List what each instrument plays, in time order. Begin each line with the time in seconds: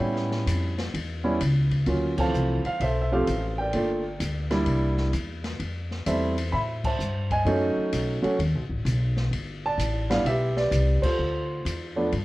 Already playing: grand piano C#5 E5 G5
0.00 upright bass A2, grand piano G3 B3 C#4 E4
0.16 snare
0.31 snare
0.46 upright bass F2, hi-hat pedal, ride
0.78 snare, ride
0.94 upright bass E2, ride
1.24 grand piano G3 B3 C#4 E4
1.41 upright bass C#2, hi-hat pedal, ride
1.71 kick, ride
1.86 upright bass D2, grand piano F#3 A#3 C#4 F4, ride
2.18 grand piano E3 F3 A3 C4 C5 F5 A5, kick, crash
2.34 upright bass C2, hi-hat pedal
2.65 grand piano F5, muted upright bass stroke, ride
2.80 upright bass B1, grand piano A4 C5 E5, ride
3.02 grand piano E5
3.12 grand piano F3 A3 C4 G4 A4 C5 F5
3.27 upright bass A1, hi-hat pedal, ride
3.58 grand piano A#4 D5 G5
3.73 upright bass G1, grand piano A3 A#3 D4 F4, ride
4.20 upright bass D2, hi-hat pedal, ride
4.51 grand piano G3 A#3 D4 E4, snare, ride
4.66 upright bass C2, ride
4.98 snare
5.13 upright bass E2, hi-hat pedal, ride
5.44 snare, ride
5.60 upright bass F2, ride
5.91 snare
6.06 upright bass E2, grand piano G3 A3 C4 E4 A4 C5 E5, hi-hat pedal, ride
6.38 ride
6.52 upright bass A2, grand piano E5 B5
6.84 grand piano C5 E5 A5, kick, crash
6.99 upright bass G2, hi-hat pedal
7.31 grand piano D#5 G#5, kick, ride
7.45 upright bass F#2, grand piano F#3 A3 C#4 D#4, ride
7.77 muted upright bass stroke
7.93 upright bass B1, hi-hat pedal, ride
8.22 grand piano F#3 A3 C#4 F#4, muted upright bass stroke, ride
8.39 upright bass D#2, ride
8.55 upright bass B1
8.70 upright bass A1, kick
8.85 upright bass B1, hi-hat pedal, ride
9.17 snare
9.31 upright bass G1, ride
9.66 grand piano D5 A5
9.78 upright bass A1, hi-hat pedal, ride
10.10 grand piano G3 B3 D4 E4 F5, snare, ride
10.24 upright bass B1, grand piano G4 B4 E5, ride
10.57 grand piano G4 B4 D5, snare
10.71 upright bass C2, hi-hat pedal, ride
11.02 grand piano F4 A4 C5, kick, crash
11.18 upright bass D2
11.65 upright bass E2, hi-hat pedal, ride
11.96 grand piano F3 A3 B3 D4
12.12 upright bass G2, ride